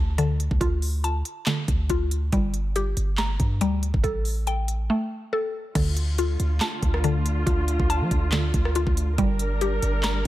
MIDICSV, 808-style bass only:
0, 0, Header, 1, 2, 480
1, 0, Start_track
1, 0, Key_signature, -1, "minor"
1, 0, Tempo, 428571
1, 684, Time_signature, 4, 2, 24, 8
1, 11502, End_track
2, 0, Start_track
2, 0, Title_t, "808-style bass"
2, 0, Program_c, 0, 38
2, 0, Note_on_c, 0, 38, 110
2, 547, Note_off_c, 0, 38, 0
2, 572, Note_on_c, 0, 38, 101
2, 677, Note_off_c, 0, 38, 0
2, 684, Note_on_c, 0, 38, 108
2, 1375, Note_off_c, 0, 38, 0
2, 1884, Note_on_c, 0, 38, 110
2, 2114, Note_off_c, 0, 38, 0
2, 2124, Note_on_c, 0, 38, 109
2, 2585, Note_off_c, 0, 38, 0
2, 2604, Note_on_c, 0, 31, 110
2, 3295, Note_off_c, 0, 31, 0
2, 3325, Note_on_c, 0, 31, 107
2, 3785, Note_off_c, 0, 31, 0
2, 3805, Note_on_c, 0, 43, 108
2, 4047, Note_on_c, 0, 38, 102
2, 4064, Note_off_c, 0, 43, 0
2, 4394, Note_off_c, 0, 38, 0
2, 4412, Note_on_c, 0, 31, 102
2, 4520, Note_off_c, 0, 31, 0
2, 4525, Note_on_c, 0, 33, 108
2, 5484, Note_off_c, 0, 33, 0
2, 6443, Note_on_c, 0, 38, 110
2, 7135, Note_off_c, 0, 38, 0
2, 7164, Note_on_c, 0, 38, 106
2, 7394, Note_off_c, 0, 38, 0
2, 7644, Note_on_c, 0, 38, 111
2, 8335, Note_off_c, 0, 38, 0
2, 8365, Note_on_c, 0, 38, 112
2, 8717, Note_off_c, 0, 38, 0
2, 8732, Note_on_c, 0, 38, 107
2, 8972, Note_on_c, 0, 53, 105
2, 8989, Note_off_c, 0, 38, 0
2, 9079, Note_off_c, 0, 53, 0
2, 9085, Note_on_c, 0, 38, 108
2, 9545, Note_off_c, 0, 38, 0
2, 9565, Note_on_c, 0, 38, 105
2, 9917, Note_off_c, 0, 38, 0
2, 9931, Note_on_c, 0, 38, 103
2, 10270, Note_off_c, 0, 38, 0
2, 10284, Note_on_c, 0, 31, 112
2, 10975, Note_off_c, 0, 31, 0
2, 11004, Note_on_c, 0, 31, 110
2, 11465, Note_off_c, 0, 31, 0
2, 11502, End_track
0, 0, End_of_file